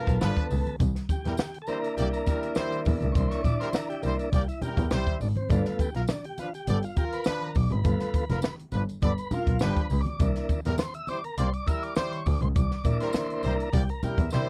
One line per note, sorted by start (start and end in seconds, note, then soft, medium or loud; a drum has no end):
0.00 0.76 B3 soft
0.00 0.15 F4 medium
0.00 0.37 F4 medium
0.00 0.76 A4 medium
0.00 0.16 A#4 loud
0.07 0.16 B1 loud
0.07 kick medium
0.07 closed hi-hat medium
0.07 tambourine soft
0.21 0.30 G1 loud
0.21 0.45 F3 loud
0.21 0.45 D4 loud
0.21 0.45 B4 loud
0.21 snare loud
0.21 tambourine medium
0.21 high conga medium
0.37 kick medium
0.37 closed hi-hat soft
0.51 0.59 C#2 loud
0.51 open hi-hat medium
0.51 tambourine medium
0.66 closed hi-hat medium
0.66 high conga medium
0.80 0.89 C2 loud
0.80 kick loud
0.80 closed hi-hat medium
0.80 tambourine medium
0.95 snare soft
0.95 closed hi-hat medium
1.09 1.58 G4 medium
1.09 kick medium
1.09 closed hi-hat medium
1.09 tambourine medium
1.09 muted conga medium
1.25 1.33 E2 medium
1.25 1.34 G3 medium
1.25 1.34 E4 medium
1.25 1.34 A#4 medium
1.25 snare soft
1.25 closed hi-hat medium
1.37 snare loud
1.37 tambourine loud
1.37 high conga medium
1.54 closed hi-hat medium
1.62 1.68 A4 medium
1.67 1.78 G3 medium
1.67 3.14 A#3 medium
1.67 3.15 D4 medium
1.67 1.78 E4 medium
1.67 3.15 E4 medium
1.67 1.95 A#4 loud
1.67 1.78 C5 medium
1.67 closed hi-hat medium
1.67 tambourine medium
1.67 muted conga medium
1.84 closed hi-hat medium
1.97 2.06 C2 medium
1.97 2.08 A#3 medium
1.97 2.12 G4 medium
1.97 2.07 G4 loud
1.97 2.07 D5 loud
1.97 closed hi-hat loud
1.97 tambourine medium
1.97 muted conga soft
2.13 2.41 A#4 medium
2.13 closed hi-hat medium
2.13 tambourine soft
2.26 2.51 G3 loud
2.26 2.51 E4 medium
2.26 2.51 A#4 loud
2.26 kick medium
2.26 closed hi-hat medium
2.26 tambourine medium
2.26 muted conga medium
2.43 closed hi-hat medium
2.55 2.80 G3 loud
2.55 2.80 E4 loud
2.55 2.80 C5 loud
2.55 snare loud
2.55 tambourine medium
2.55 high conga medium
2.72 closed hi-hat medium
2.85 2.95 E2 medium
2.85 kick loud
2.85 open hi-hat medium
2.85 tambourine medium
3.01 3.10 C#2 loud
3.01 closed hi-hat soft
3.01 high conga medium
3.12 3.23 C2 loud
3.12 3.42 A#3 medium
3.12 4.02 D4 medium
3.12 3.32 C5 loud
3.12 3.15 C#5 medium
3.12 kick loud
3.12 closed hi-hat medium
3.12 tambourine medium
3.16 4.02 E4 medium
3.31 3.44 C#5 medium
3.31 snare soft
3.31 closed hi-hat medium
3.44 3.53 A#1 medium
3.44 3.61 D5 loud
3.44 kick medium
3.44 closed hi-hat medium
3.44 tambourine medium
3.44 muted conga medium
3.60 3.69 G3 medium
3.60 3.69 E4 medium
3.60 3.69 A#4 medium
3.60 3.74 C5 loud
3.60 snare soft
3.60 closed hi-hat medium
3.73 3.89 A#4 loud
3.73 snare loud
3.73 tambourine loud
3.73 high conga medium
3.90 4.04 G4 loud
3.90 closed hi-hat medium
4.03 4.12 C2 medium
4.03 4.14 G3 medium
4.03 4.30 A#3 soft
4.03 4.18 D4 soft
4.03 4.30 E4 medium
4.03 4.14 E4 medium
4.03 4.14 C5 medium
4.03 closed hi-hat medium
4.03 tambourine medium
4.03 muted conga medium
4.19 4.32 D4 medium
4.19 closed hi-hat medium
4.19 tambourine soft
4.32 4.41 C2 medium
4.32 4.43 A#3 medium
4.32 4.47 G4 medium
4.32 4.43 G4 medium
4.32 4.43 D5 loud
4.32 kick loud
4.32 closed hi-hat medium
4.32 tambourine medium
4.32 muted conga soft
4.48 4.61 E4 medium
4.48 closed hi-hat medium
4.48 tambourine soft
4.62 4.86 G3 medium
4.62 4.86 E4 medium
4.62 4.77 G4 loud
4.62 4.86 A#4 medium
4.62 closed hi-hat medium
4.62 tambourine medium
4.62 muted conga medium
4.62 low conga medium
4.77 4.85 E2 loud
4.77 5.08 G4 medium
4.77 kick medium
4.77 closed hi-hat medium
4.77 tambourine soft
4.91 5.00 C2 medium
4.91 5.16 G3 loud
4.91 5.15 E4 loud
4.91 5.15 C5 loud
4.91 snare loud
4.91 tambourine medium
4.91 high conga medium
5.07 5.20 E4 medium
5.07 kick medium
5.07 closed hi-hat soft
5.21 5.29 G#1 loud
5.21 5.28 D4 medium
5.21 open hi-hat medium
5.21 tambourine medium
5.36 5.49 C4 medium
5.36 closed hi-hat soft
5.36 high conga medium
5.50 5.59 G1 loud
5.50 5.90 A3 medium
5.50 5.90 B3 soft
5.50 5.67 D4 medium
5.50 5.65 F4 medium
5.50 kick loud
5.50 closed hi-hat medium
5.50 tambourine medium
5.65 5.80 F4 medium
5.65 snare soft
5.65 closed hi-hat medium
5.79 5.95 G4 medium
5.79 kick medium
5.79 closed hi-hat medium
5.79 tambourine medium
5.79 muted conga medium
5.94 6.04 B1 medium
5.94 6.03 F4 medium
5.94 6.02 F4 medium
5.94 6.03 A#4 medium
5.94 snare soft
5.94 closed hi-hat soft
6.08 6.26 D4 medium
6.08 snare loud
6.08 tambourine loud
6.08 high conga medium
6.24 6.39 G4 medium
6.24 closed hi-hat medium
6.38 6.48 F3 medium
6.38 6.48 D4 medium
6.38 6.53 F4 medium
6.38 6.48 B4 medium
6.38 closed hi-hat medium
6.38 tambourine medium
6.38 muted conga medium
6.54 6.85 G4 loud
6.54 closed hi-hat medium
6.54 tambourine soft
6.67 6.76 G1 loud
6.67 6.77 B3 medium
6.67 6.77 A4 medium
6.67 6.77 D5 loud
6.67 closed hi-hat loud
6.67 tambourine medium
6.82 6.97 F4 medium
6.82 closed hi-hat medium
6.82 tambourine soft
6.96 7.20 F4 medium
6.96 7.05 G4 loud
6.96 7.21 A#4 loud
6.96 kick medium
6.96 closed hi-hat medium
6.96 tambourine medium
6.96 muted conga medium
7.12 7.43 B4 medium
7.12 closed hi-hat medium
7.12 tambourine soft
7.24 7.49 F3 loud
7.24 7.50 D4 loud
7.24 7.50 B4 loud
7.24 snare loud
7.24 tambourine medium
7.24 high conga medium
7.41 7.57 A#4 medium
7.41 closed hi-hat medium
7.55 7.64 B1 loud
7.55 7.72 D5 loud
7.55 kick medium
7.55 open hi-hat medium
7.55 tambourine medium
7.70 7.80 G#1 loud
7.70 8.56 B4 medium
7.70 closed hi-hat soft
7.70 high conga medium
7.84 7.93 G1 loud
7.84 8.25 A3 medium
7.84 8.25 B3 medium
7.84 8.25 F4 medium
7.84 kick loud
7.84 closed hi-hat medium
7.84 tambourine medium
8.00 snare soft
8.00 closed hi-hat medium
8.14 kick medium
8.14 closed hi-hat medium
8.14 tambourine soft
8.14 muted conga medium
8.29 8.39 F1 medium
8.29 8.38 F4 medium
8.29 8.38 A#4 medium
8.29 snare soft
8.29 closed hi-hat medium
8.29 tambourine soft
8.42 snare loud
8.42 tambourine loud
8.42 high conga medium
8.59 closed hi-hat medium
8.72 8.81 G1 medium
8.72 8.82 F3 medium
8.72 8.82 D4 medium
8.72 8.82 B4 medium
8.72 closed hi-hat medium
8.72 tambourine medium
8.72 muted conga medium
8.89 closed hi-hat medium
8.89 tambourine soft
9.01 9.11 G1 loud
9.01 9.11 B3 medium
9.01 9.11 A4 medium
9.01 9.34 B4 medium
9.01 9.11 D5 loud
9.01 kick loud
9.01 closed hi-hat medium
9.01 tambourine medium
9.18 closed hi-hat medium
9.18 tambourine soft
9.31 9.55 F4 loud
9.31 9.63 F4 loud
9.31 9.56 A#4 loud
9.31 closed hi-hat medium
9.31 tambourine medium
9.31 muted conga medium
9.31 low conga medium
9.47 9.55 B1 medium
9.47 kick medium
9.47 closed hi-hat medium
9.59 9.70 G1 loud
9.59 9.85 F3 loud
9.59 9.85 D4 loud
9.59 9.82 G4 loud
9.59 9.85 B4 loud
9.59 snare loud
9.59 tambourine medium
9.59 high conga medium
9.77 kick loud
9.77 closed hi-hat soft
9.82 10.02 B4 loud
9.90 9.99 C#2 loud
9.90 open hi-hat medium
9.90 tambourine medium
10.01 10.28 D5 medium
10.05 closed hi-hat medium
10.05 high conga medium
10.19 10.28 C2 loud
10.19 10.60 A#3 medium
10.19 10.60 D4 medium
10.19 10.61 E4 medium
10.19 kick loud
10.19 closed hi-hat medium
10.19 tambourine medium
10.35 snare soft
10.35 closed hi-hat medium
10.49 kick medium
10.49 closed hi-hat medium
10.49 tambourine soft
10.49 muted conga medium
10.65 10.74 E2 medium
10.65 10.73 G3 medium
10.65 10.74 E4 medium
10.65 10.74 A#4 medium
10.65 snare soft
10.65 closed hi-hat medium
10.65 tambourine soft
10.78 10.94 C5 loud
10.78 snare loud
10.78 tambourine loud
10.78 high conga medium
10.94 11.09 E5 loud
10.94 closed hi-hat medium
11.07 11.18 G3 medium
11.07 11.18 E4 medium
11.07 11.18 C5 medium
11.07 11.25 D5 loud
11.07 closed hi-hat medium
11.07 tambourine medium
11.07 muted conga medium
11.24 11.39 A#4 loud
11.24 closed hi-hat medium
11.37 11.46 C2 loud
11.37 11.47 A#3 loud
11.37 11.48 G4 medium
11.37 11.53 C5 loud
11.37 11.47 D5 loud
11.37 closed hi-hat loud
11.37 tambourine medium
11.53 11.67 D5 loud
11.53 closed hi-hat medium
11.67 11.91 G3 medium
11.67 11.91 E4 loud
11.67 11.91 A#4 loud
11.67 11.84 E5 loud
11.67 kick medium
11.67 closed hi-hat medium
11.67 tambourine medium
11.67 muted conga medium
11.83 11.95 D5 loud
11.83 closed hi-hat medium
11.95 12.21 G3 loud
11.95 12.20 E4 loud
11.95 12.20 C5 loud
11.95 12.13 D5 loud
11.95 snare loud
11.95 tambourine medium
11.95 high conga medium
12.12 12.27 C#5 medium
12.12 closed hi-hat medium
12.26 12.35 D2 medium
12.26 12.41 D5 loud
12.26 kick medium
12.26 open hi-hat medium
12.26 tambourine medium
12.41 12.50 C#2 medium
12.41 12.48 C5 medium
12.41 closed hi-hat medium
12.41 high conga medium
12.56 12.64 C2 loud
12.56 12.98 D5 loud
12.56 kick loud
12.56 closed hi-hat loud
12.56 tambourine medium
12.71 snare soft
12.71 closed hi-hat medium
12.85 12.93 A#1 loud
12.85 13.69 A#3 medium
12.85 13.70 D4 medium
12.85 13.70 E4 medium
12.85 kick medium
12.85 closed hi-hat medium
12.85 tambourine medium
12.85 muted conga medium
13.00 13.09 G3 medium
13.00 13.09 E4 medium
13.00 13.09 A#4 medium
13.00 13.45 C5 loud
13.00 snare soft
13.00 closed hi-hat medium
13.00 tambourine soft
13.13 snare loud
13.13 tambourine loud
13.13 high conga medium
13.30 closed hi-hat medium
13.43 13.52 C2 medium
13.43 13.53 G3 medium
13.43 13.53 E4 medium
13.43 13.75 A#4 medium
13.43 13.53 C5 medium
13.43 closed hi-hat medium
13.43 tambourine medium
13.43 muted conga soft
13.60 closed hi-hat medium
13.72 13.82 C2 loud
13.72 13.82 A#3 medium
13.72 13.82 G4 medium
13.72 13.90 G4 medium
13.72 13.82 D5 loud
13.72 kick medium
13.72 closed hi-hat loud
13.72 tambourine medium
13.72 muted conga soft
13.89 14.04 A#4 medium
13.89 closed hi-hat medium
14.02 14.26 G3 medium
14.02 14.26 E4 medium
14.02 14.18 G4 loud
14.02 14.26 A#4 loud
14.02 closed hi-hat medium
14.02 tambourine medium
14.02 muted conga medium
14.02 low conga medium
14.18 14.26 E2 medium
14.18 14.32 E4 medium
14.18 kick loud
14.18 closed hi-hat medium
14.30 14.41 C3 loud
14.30 14.49 G3 loud
14.30 14.49 A#3 medium
14.30 14.49 D4 medium
14.30 14.49 E4 loud
14.30 14.49 E4 medium
14.30 14.49 C5 loud
14.30 snare medium
14.30 tambourine medium
14.30 high conga medium